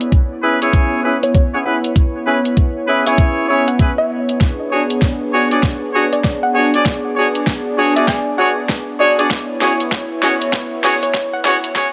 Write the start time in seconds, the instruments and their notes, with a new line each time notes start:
Already playing: analog synth pad B3 E4 C#5
0.01 closed hi-hat
0.12 kick, closed hi-hat
0.43 horn section C#4 E4 G#4 B4
0.62 horn section C#4 E4 G#4 C#5, closed hi-hat
0.73 kick, closed hi-hat
1.04 horn section C#4 E4 G#4 B4
1.23 synth pluck C#5, closed hi-hat
1.35 synth pluck C#5, kick, closed hi-hat
1.54 horn section C#4 E4 G#4 C#5, synth pluck F#5
1.65 horn section C#4 E4 G#4 B4, synth pluck F#5
1.84 closed hi-hat
1.96 kick, closed hi-hat
2.26 horn section C#4 E4 G#4 B4
2.45 closed hi-hat
2.57 kick, closed hi-hat
2.88 horn section C#4 E4 G#4 B4
3.07 horn section C#4 E4 G#4 C#5, synth pluck E5, closed hi-hat
3.18 kick, closed hi-hat
3.49 horn section C#4 E4 G#4 C#5
3.68 synth pluck F#5, closed hi-hat
3.79 horn section C#4 E4 G#4 B4, kick, closed hi-hat
3.98 synth pluck E5
4.29 closed hi-hat
4.41 analog synth pad D4 G#4, kick, snare, closed hi-hat
4.71 horn section D4 F#4 G#4 C#5
4.90 closed hi-hat
5.02 kick, snare, closed hi-hat
5.33 horn section D4 F#4 G#4 C#5
5.51 horn section D4 F#4 G#4 D5, closed hi-hat
5.63 kick, snare, closed hi-hat
5.94 horn section D4 F#4 G#4 C#5
6.13 synth pluck D5, closed hi-hat
6.24 synth pluck D5, kick, snare, closed hi-hat
6.43 synth pluck F#5
6.55 horn section D4 F#4 G#4 C#5, synth pluck F#5
6.74 horn section D4 F#4 G#4 D5, closed hi-hat
6.86 analog synth pad D5, kick, snare, closed hi-hat
7.16 horn section D4 F#4 G#4 C#5
7.35 closed hi-hat
7.47 kick, snare, closed hi-hat
7.77 horn section D4 F#4 G#4 C#5
7.96 horn section D4 F#4 G#4 D5, synth pluck E5, closed hi-hat
8.08 synth pluck G#5, kick, snare, closed hi-hat
8.38 horn section D4 F#4 G#4 C#5, synth pluck F#5
8.69 kick, snare, closed hi-hat
9.00 horn section D4 F#4 G#4 C#5, synth pluck D5
9.19 horn section D4 F#4 G#4 D5, synth pluck D5, closed hi-hat
9.30 analog synth pad B3 E4 C#5, kick, snare, closed hi-hat
9.61 horn section C#4 F#4 G#4 C#5, snare
9.80 closed hi-hat
9.92 kick, snare, closed hi-hat
10.22 horn section C#4 F#4 G#4 C#5, snare
10.42 closed hi-hat
10.53 kick, snare
10.84 horn section C#4 F#4 G#4 C#5, snare
11.03 synth pluck C#5, closed hi-hat
11.14 synth pluck C#5, kick, snare, closed hi-hat
11.33 synth pluck F#5
11.45 horn section C#4 F#4 G#4 C#5, synth pluck F#5, snare
11.64 closed hi-hat
11.75 horn section C#4 F#4 G#4 C#5, kick, snare, closed hi-hat